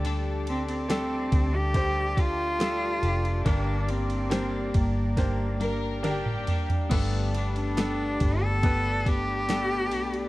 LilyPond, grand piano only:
<<
  \new Staff \with { instrumentName = "Grand piano" } { \time 4/4 \key g \minor \tempo 4 = 70 <a d' g' a'>4 <a d' g' a'>4 <a d' g' c''>4 <a d' g' a'>4 | <bes d' g' bes'>4 <bes d' g' c''>4 <bes d' g' c''>4 <bes d' g' bes'>4 | \key g \mixolydian <b d' g' a'>4 <b d' g' a'>4 <b d' g' b'>4 <b d' g' a'>4 | }
  \new Staff \with { instrumentName = "Grand piano" } { \clef bass \time 4/4 \key g \minor d4 r2. | g,4. r2 r8 | \key g \mixolydian g,4. r2 r8 | }
>>